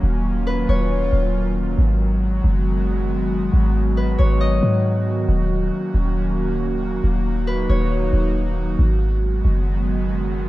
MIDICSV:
0, 0, Header, 1, 4, 480
1, 0, Start_track
1, 0, Key_signature, -6, "minor"
1, 0, Tempo, 437956
1, 35, Time_signature, 4, 2, 24, 8
1, 11496, End_track
2, 0, Start_track
2, 0, Title_t, "Harp"
2, 0, Program_c, 0, 46
2, 513, Note_on_c, 0, 71, 92
2, 756, Note_on_c, 0, 73, 79
2, 2758, Note_off_c, 0, 71, 0
2, 2851, Note_off_c, 0, 73, 0
2, 4352, Note_on_c, 0, 71, 77
2, 4587, Note_on_c, 0, 73, 81
2, 4830, Note_on_c, 0, 75, 91
2, 6598, Note_off_c, 0, 71, 0
2, 6682, Note_off_c, 0, 73, 0
2, 6785, Note_off_c, 0, 75, 0
2, 8190, Note_on_c, 0, 71, 91
2, 8433, Note_on_c, 0, 73, 75
2, 10435, Note_off_c, 0, 71, 0
2, 10528, Note_off_c, 0, 73, 0
2, 11496, End_track
3, 0, Start_track
3, 0, Title_t, "Analog synth pad"
3, 0, Program_c, 1, 89
3, 0, Note_on_c, 1, 51, 81
3, 0, Note_on_c, 1, 54, 76
3, 0, Note_on_c, 1, 58, 76
3, 0, Note_on_c, 1, 61, 74
3, 36, Note_on_c, 1, 65, 96
3, 1916, Note_off_c, 1, 58, 0
3, 1916, Note_off_c, 1, 61, 0
3, 1936, Note_off_c, 1, 65, 0
3, 1956, Note_on_c, 1, 56, 78
3, 1956, Note_on_c, 1, 59, 78
3, 1956, Note_on_c, 1, 66, 94
3, 5757, Note_off_c, 1, 56, 0
3, 5757, Note_off_c, 1, 59, 0
3, 5795, Note_on_c, 1, 61, 79
3, 5796, Note_on_c, 1, 58, 79
3, 7696, Note_off_c, 1, 61, 0
3, 7715, Note_on_c, 1, 63, 77
3, 9590, Note_off_c, 1, 51, 0
3, 9590, Note_off_c, 1, 54, 0
3, 9597, Note_off_c, 1, 58, 0
3, 9616, Note_off_c, 1, 63, 0
3, 9633, Note_on_c, 1, 51, 89
3, 9634, Note_on_c, 1, 54, 75
3, 9634, Note_on_c, 1, 59, 75
3, 9635, Note_on_c, 1, 56, 77
3, 11496, Note_off_c, 1, 51, 0
3, 11496, Note_off_c, 1, 54, 0
3, 11496, Note_off_c, 1, 56, 0
3, 11496, Note_off_c, 1, 59, 0
3, 11496, Note_off_c, 1, 66, 0
3, 11496, End_track
4, 0, Start_track
4, 0, Title_t, "808-style bass"
4, 0, Program_c, 2, 38
4, 35, Note_on_c, 2, 27, 108
4, 726, Note_off_c, 2, 27, 0
4, 756, Note_on_c, 2, 27, 106
4, 1216, Note_off_c, 2, 27, 0
4, 1236, Note_on_c, 2, 27, 105
4, 1926, Note_off_c, 2, 27, 0
4, 1955, Note_on_c, 2, 32, 109
4, 2646, Note_off_c, 2, 32, 0
4, 2676, Note_on_c, 2, 30, 107
4, 3832, Note_off_c, 2, 30, 0
4, 3874, Note_on_c, 2, 32, 111
4, 4565, Note_off_c, 2, 32, 0
4, 4595, Note_on_c, 2, 32, 107
4, 5056, Note_off_c, 2, 32, 0
4, 5074, Note_on_c, 2, 44, 102
4, 5765, Note_off_c, 2, 44, 0
4, 5795, Note_on_c, 2, 27, 110
4, 6256, Note_off_c, 2, 27, 0
4, 6515, Note_on_c, 2, 27, 104
4, 7671, Note_off_c, 2, 27, 0
4, 7715, Note_on_c, 2, 27, 106
4, 8406, Note_off_c, 2, 27, 0
4, 8435, Note_on_c, 2, 27, 111
4, 8896, Note_off_c, 2, 27, 0
4, 8913, Note_on_c, 2, 27, 105
4, 9605, Note_off_c, 2, 27, 0
4, 9634, Note_on_c, 2, 32, 112
4, 10326, Note_off_c, 2, 32, 0
4, 10354, Note_on_c, 2, 30, 106
4, 11496, Note_off_c, 2, 30, 0
4, 11496, End_track
0, 0, End_of_file